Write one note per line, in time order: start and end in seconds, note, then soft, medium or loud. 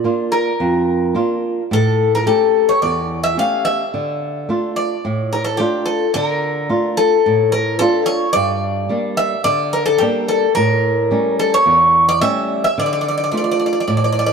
0.00 0.28 D5 medium
0.04 0.49 A#3 soft
0.04 0.49 D4 soft
0.04 0.49 F4 soft
0.32 1.39 A#4 medium
0.60 1.14 F2 medium
1.15 1.60 A#3 soft
1.15 1.60 D4 soft
1.15 1.60 F4 medium
1.71 2.25 A2 medium
1.71 2.14 A4 medium
2.15 2.27 A#4 medium
2.26 2.71 A3 soft
2.26 2.71 C#4 soft
2.26 2.71 G4 soft
2.26 2.70 A4 medium
2.69 2.82 C#5 medium
2.82 3.37 E2 medium
2.82 3.21 D5 medium
3.24 3.38 E5 medium
3.37 3.82 A3 soft
3.37 3.82 C#4 soft
3.37 3.82 G4 soft
3.37 3.65 F5 medium
3.65 4.72 E5 medium
3.94 4.48 D3 medium
4.49 4.93 A3 soft
4.49 4.94 D4 soft
4.49 4.94 F4 soft
4.76 5.83 D5 medium
5.05 5.58 A2 medium
5.33 5.44 A#4 medium
5.44 5.60 A4 medium
5.57 6.04 A3 soft
5.57 6.04 D4 soft
5.57 6.04 F4 soft
5.57 5.84 G4 medium
5.86 6.14 A4 medium
6.14 6.69 D3 medium
6.14 6.93 A#4 medium
6.69 7.14 A3 soft
6.69 7.14 D4 soft
6.69 7.14 F4 soft
6.97 7.52 A4 medium
7.26 7.79 A2 medium
7.52 7.79 A#4 medium
7.79 8.25 A3 medium
7.79 8.25 D4 soft
7.79 8.25 F4 medium
7.79 8.06 A4 medium
8.06 8.32 C#5 medium
8.33 8.89 G2 medium
8.33 9.13 D5 medium
8.89 9.34 G3 soft
8.89 9.35 A#3 soft
8.89 9.35 D4 soft
9.17 9.44 E5 medium
9.44 9.99 D3 medium
9.44 9.74 D5 medium
9.73 9.85 A#4 medium
9.86 10.01 A4 medium
9.98 10.46 G3 soft
9.98 10.46 A#3 soft
9.98 10.46 D4 medium
9.98 10.26 G4 medium
10.28 10.54 A4 medium
10.55 11.10 A2 medium
10.55 11.35 A#4 medium
11.11 11.56 G3 soft
11.11 11.56 A3 soft
11.11 11.56 C#4 soft
11.39 11.54 A4 medium
11.54 12.05 C#5 medium
11.66 12.20 E2 medium
12.09 12.21 D5 medium
12.21 12.66 G3 soft
12.21 12.66 A3 soft
12.21 12.66 C#4 medium
12.21 12.63 E5 medium
12.64 12.77 E5 medium
12.78 13.31 D3 medium
12.78 12.85 D5 medium
12.86 12.92 D5 medium
12.93 13.00 D5 medium
13.01 13.07 D5 medium
13.08 13.15 D5 medium
13.18 13.22 D5 medium
13.24 13.30 D5 medium
13.32 13.77 A3 soft
13.32 13.77 D4 soft
13.32 13.77 F4 medium
13.32 13.36 D5 soft
13.37 13.43 D5 medium
13.44 13.50 D5 soft
13.51 13.58 D5 medium
13.60 13.65 D5 soft
13.66 13.72 D5 medium
13.73 13.79 D5 soft
13.80 13.86 D5 medium
13.88 14.33 A2 medium
13.88 13.95 D5 soft
13.97 14.03 D5 medium
14.04 14.11 D5 medium
14.12 14.18 D5 medium
14.19 14.25 D5 medium
14.26 14.33 D5 medium